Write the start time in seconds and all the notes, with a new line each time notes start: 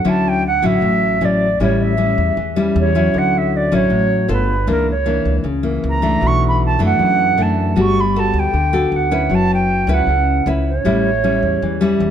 Already playing: F#5
0.04 D2 D3 F#3 C#4 E4
0.09 A5
0.28 G5
0.47 F#5
0.62 A1 F#3 C#4 E4 E5
0.81 A1 A2
1.21 A1 F#3 C#4 E4 D5
1.60 A1 A2 G3 C#4 E4 C#5
1.82 E5
1.97 G3 C#4 E4
2.18 E2
2.37 E2 E3
2.56 G3 C#4 E4
2.76 E2 C#5
2.95 F#3 C#4 E4
3.14 D2 D3
3.18 F#5
3.38 E5
3.56 D5
3.72 A1 F#3 C#4 E4 C#5
3.90 A1 A2
4.28 G1 B3 F4 A4
4.33 B4
4.67 C#2 E3 A#3 D4 A#4
4.91 C#5
5.06 E3 A#3 D4
5.25 C#2
5.44 C#2 C#3
5.63 E3 A#3
5.84 C#2
5.89 A#5
6.02 E3 A3 D4
6.21 B1 B2
6.27 C#6
6.48 B5
6.66 A5
6.79 F#2 E3 A3 D4
6.85 F#5
6.99 F#2
7.37 F#2 E3 A3 D4
7.42 A5
7.76 G1 G3 B3 F#4 A4
7.81 C#6
8.00 B5
8.16 B3 F#4 A4 A5
8.34 D2
8.39 G5
8.53 D2 D3
8.73 B3 F#4 A4
8.92 D2 F#5
9.11 C#4 E4 B4
9.30 F#1 F#3
9.35 A5
9.54 G5
9.87 C#2 C#4 E4 B4
9.93 F#5
10.07 C#2 C#3
10.46 C#2 C#4 E4 B4
10.68 C#5
10.85 A1 A2 G3 C#4 E4
11.24 G3 C#4 E4
11.43 E2
11.62 E2 E3
11.81 G3 C#4 E4
12.00 E2